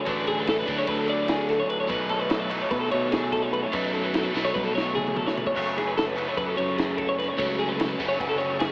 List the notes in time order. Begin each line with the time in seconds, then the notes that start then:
0.06 A1 D3 F#3 A3 D4 B4, kick, ride
0.27 G#4, ride
0.39 B4
0.47 A4, snare, ride
0.59 B4
0.66 D2 D3 F#3 A3 D4, kick, ride
0.78 C#5
0.87 D2 B4, kick, ride
0.99 A4
1.08 D5, ride
1.28 G#4, snare, ride
1.49 A4, snare, ride
1.60 C#5
1.70 B4, ride
1.80 C#5
1.87 B1 B2 F#3 A3 D#4 B4, kick, ride
2.09 A4, ride
2.19 B4
2.30 A4, snare, ride
2.40 B4
2.49 B2 F#3 A3 D#4, ride
2.61 C#5
2.71 B2 B4, kick, snare, ride
2.80 A4
2.91 B2 C#5, ride
3.12 G#4, snare, ride
3.32 A4, kick, snare, ride
3.42 C#5
3.53 B4, ride
3.63 C#5
3.72 F#2 B2 F#3 A3 D#4 B4, kick, ride
3.93 A4, ride
4.04 B4
4.13 A4, snare, ride
4.23 B4
4.34 B1 B2 F#3 A3 D#4, snare
4.45 C#5
4.54 B1 B4, kick, high tom
4.64 A4
4.75 C#5, snare
4.95 G#4, mid tom
5.07 mid tom
5.16 A4, mid tom
5.26 C#5, snare
5.36 B4, floor tom
5.46 C#5, kick
5.56 F#1 F#2 C#3 F#3 A3 C#4 C#5, kick, crash
5.78 G#4, snare, ride
5.87 B4
5.97 A4, snare, ride
6.07 B4
6.16 F#2 C#3 F#3 A3 C#4, ride
6.28 C#5
6.37 F#2 B4, kick, snare, ride
6.47 A4
6.57 F#2 C#5, ride
6.78 G#4, snare, ride
6.97 A4, kick, ride
7.09 C#5
7.18 B4, snare, ride
7.28 C#5
7.37 C#2 F#2 C#3 F#3 A3 C#4 C#5, kick, ride
7.59 G#4, ride
7.69 B4
7.78 A4, snare, ride
7.88 B4
7.98 F#1 F#2 C#3 F#3 A3 C#4, kick, ride
8.08 C#5
8.19 F#1 B4, kick, ride
8.29 A4
8.38 C#5, ride
8.59 G#4, snare, ride